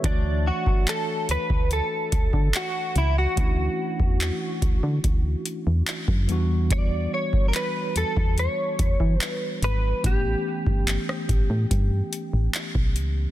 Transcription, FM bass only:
\new Staff \with { instrumentName = "FM bass" } { \clef bass \time 4/4 \key d \major \tempo 4 = 72 d,8. r8. d,16 d,8 r16 d,16 d16 r8 cis,8 | d,8 r16 e,8 r16 d,16 d16 d,8 r16 e,16 r16 fis,16 e,8~ | e,8. r8. e,16 e,8 r16 e,16 e16 r8 gis,,8 | a,,8 r16 g,,8 r16 a,,16 a,16 g,8 r16 a,,16 r16 b,,16 cis,8 | }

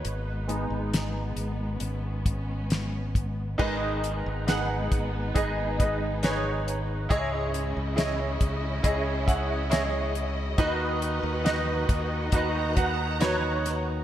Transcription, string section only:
\new Staff \with { instrumentName = "String section" } { \time 4/4 \key gis \minor \tempo 4 = 69 << { gis1 | <gis dis'>1 | <cis' e'>1 | b'2 ais''2 | } \\ { <b dis'>2 cis'2 | b1 | <cis dis''>1 | <dis fis'>1 | } >> }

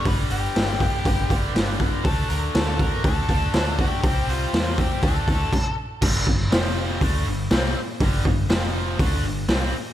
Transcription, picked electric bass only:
\new Staff \with { instrumentName = "Picked electric bass" } { \clef bass \time 4/4 \key d \mixolydian \tempo 4 = 121 g,,8 g,,8 g,,4 g,,8 g,,8 g,,4 | d,8 d,8 d,4 d,8 d,8 d,4 | c,8 c,8 e,4 d,8 d,8 r4 | \key f \lydian g,,8 g,,8 f,,4 d,8 g,,8 c,8 r8 |
g,,8 g,,8 f,,4 d,8 g,,8 c,8 r8 | }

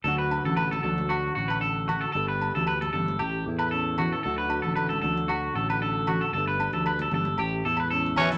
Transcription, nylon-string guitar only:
\new Staff \with { instrumentName = "Nylon-string guitar" } { \time 4/4 \key d \major \tempo 4 = 114 << { <fis a d' fis'>8 d'8 a8 d'8 fis'4 d'8 fis'8 | <g a d' a'>8 d'8 a8 d'8 r8 e'8 cis'8 e'8 | <fis a d' fis'>8 d'8 a8 d'8 fis'4 d'8 fis'8 | <g a d' a'>8 d'4 d'8 r8 e'8 cis'8 cis'16 e'16 | } \\ { d4. fis4 a,4. | g,4. g8 a,4. e8 | d4. fis4 a,4. | g,4. g8 a,4. e8 | } >> }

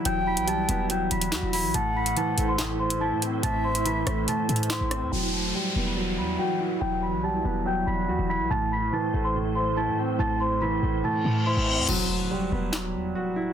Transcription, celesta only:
\new Staff \with { instrumentName = "Celesta" } { \time 4/4 \key e \minor \tempo 4 = 142 <g'' g'''>8 <b'' b'''>8 <a'' a'''>4 <g'' g'''>8 <b'' b'''>4 <b'' b'''>8 | <a'' a'''>8 <b'' b'''>8 <a'' a'''>8. <c'' c'''>16 r8 <c'' c'''>8 <a'' a'''>8 r8 | <a'' a'''>8 <c'' c'''>8 <b'' b'''>4 <a'' a'''>4 <c'' c'''>4 | <g'' g'''>8 a''8 <g'' g'''>8. <b'' b'''>16 r8 <b'' b'''>8 <g'' g'''>8 r8 |
<g'' g'''>8 <b'' b'''>8 <a'' a'''>4 <g'' g'''>8 <b'' b'''>4 <b'' b'''>8 | <a'' a'''>8 <b'' b'''>8 <a'' a'''>8. <c'' c'''>16 r8 <c'' c'''>8 <a'' a'''>8 r8 | <a'' a'''>8 <c'' c'''>8 <b'' b'''>4 <a'' a'''>4 <c'' c'''>4 | r1 | }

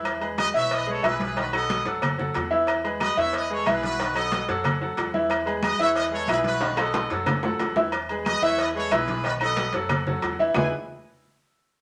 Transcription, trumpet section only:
\new Staff \with { instrumentName = "Trumpet section" } { \time 4/4 \key e \major \tempo 4 = 183 r4 <b' dis''>8 <cis'' e''>8 <b' dis''>8 <a' cis''>8 <gis' b'>8 <gis' b'>8 | <fis' b'>8 <b' dis''>4 r2 r8 | r4 <b' dis''>8 <cis'' e''>8 <b' dis''>8 <a' cis''>8 <gis' b'>8 <fis' b'>8~ | <fis' b'>8 <b' dis''>4 r2 r8 |
r4 <b' dis''>8 <cis'' e''>8 <b' dis''>8 <a' cis''>8 <gis' b'>8 <fis' b'>8~ | <fis' b'>8 <b' dis''>4 r2 r8 | r4 <b' dis''>8 <cis'' e''>8 <b' dis''>8 <a' cis''>8 <gis' b'>4 | <fis' b'>8 <b' dis''>4 r2 r8 |
gis''8 r2. r8 | }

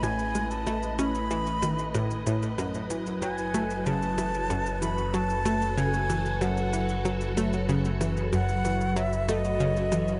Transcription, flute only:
\new Staff \with { instrumentName = "Flute" } { \time 4/4 \key fis \dorian \tempo 4 = 94 gis''8. a''8. b''2 r8 | r4 gis''4 a''4. b''8 | a''4 gis''4 fis''4. r8 | r4 fis''4 e''8 dis''4. | }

